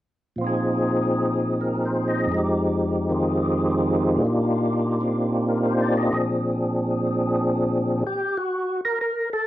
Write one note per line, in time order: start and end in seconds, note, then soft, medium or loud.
0.36 2.29 A#2 soft
0.36 2.28 F3 soft
0.41 2.32 C4 soft
0.41 2.33 D#4 soft
0.47 2.34 G#4 soft
1.61 1.94 A#4 soft
1.85 2.21 C5 soft
2.08 2.41 D#5 soft
2.26 4.20 F2 soft
2.26 4.21 F3 soft
2.32 4.22 G#3 soft
2.32 4.21 D#4 soft
2.37 4.25 G4 soft
3.10 4.22 D#3 soft
3.10 4.22 C4 soft
3.10 4.23 F4 soft
3.10 4.23 G#4 soft
4.16 6.10 A#2 soft
4.16 4.99 A#3 soft
4.20 5.01 D4 soft
4.20 6.13 D#4 soft
4.25 5.02 F4 soft
4.25 6.15 G4 medium
5.00 6.12 A#3 soft
5.00 6.12 C4 soft
5.00 6.12 D4 soft
5.00 6.14 F4 soft
5.48 5.74 A#4 soft
5.65 5.95 C5 soft
5.81 6.06 D5 soft
5.97 6.22 D#5 soft
6.12 8.03 A#2 soft
6.12 8.04 F3 soft
6.12 8.04 C4 soft
6.12 8.04 D4 soft
6.12 8.04 G#4 soft
8.07 8.38 G4 loud
8.37 8.81 F#4 medium
8.85 8.99 A#4 medium
9.01 9.30 A#4 medium
9.33 9.47 A4 medium